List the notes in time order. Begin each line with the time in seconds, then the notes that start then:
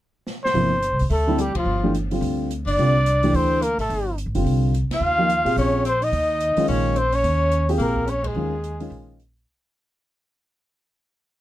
0.27 snare
0.44 C5, snare
0.54 G1 C3 F3 A#3 E4, open hi-hat
0.83 closed hi-hat
0.91 C2
0.99 D2, open hi-hat
1.10 D2 A3 A4, open hi-hat
1.28 D3 G3 C4 E4
1.38 G3 G4, closed hi-hat
1.55 D2 F3 F4, kick, ride
1.65 G1
1.83 E3 A3 D4 G4
1.95 closed hi-hat
2.11 D3 G3 C4 F4, open hi-hat
2.21 D2, open hi-hat
2.51 closed hi-hat
2.66 F#1 D4 D5, open hi-hat
2.77 C2 D3 G3 C4 F4, open hi-hat
3.06 closed hi-hat
3.23 E3 A3 D4 G4, open hi-hat
3.33 D2 C4 C5, open hi-hat
3.62 A#3 A#4, closed hi-hat
3.78 A1 A3 A4, open hi-hat
3.89 G1, open hi-hat
4.18 closed hi-hat
4.26 A1
4.35 F#1 D3 G3 C4 F4, open hi-hat
4.44 C2, open hi-hat
4.75 closed hi-hat
4.89 F4, muted upright bass stroke, snare, ride
4.94 F5
5.00 D#2
5.18 F3 A#3 D#4 G4
5.30 closed hi-hat
5.45 A#2 C4 F4 G4 G#4, open hi-hat
5.56 A#1 C#4 C#5, open hi-hat
5.85 C4 C5, closed hi-hat
6.02 D#4 D#5, open hi-hat
6.12 D#2, open hi-hat
6.40 closed hi-hat
6.57 D#3 G#3 C#4 F4, muted upright bass stroke, open hi-hat
6.68 A#1 C#4 C#5, open hi-hat
6.96 C4 C5, closed hi-hat
7.12 C#4 C#5, open hi-hat
7.24 D#2, open hi-hat
7.52 closed hi-hat
7.69 C4 F4 G4 G#4, open hi-hat
7.78 A#1 A#3 A#4, open hi-hat
7.96 kick
8.06 C#4 C#5, closed hi-hat
8.24 G#3 G#4, kick, ride
8.35 D#2 D#3 G#3 C#4 F4
8.64 closed hi-hat
8.80 D#3 G#3 C#4 F4, open hi-hat
8.90 A#1, open hi-hat
9.20 closed hi-hat
9.37 open hi-hat